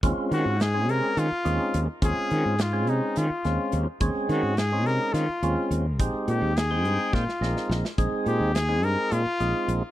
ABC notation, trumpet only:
X:1
M:7/8
L:1/8
Q:1/4=106
K:Bbphr
V:1 name="Trumpet"
z G A B F2 z | A2 F E F2 z | z G A B F2 z | z =G A2 F2 z |
z =G A B F2 z |]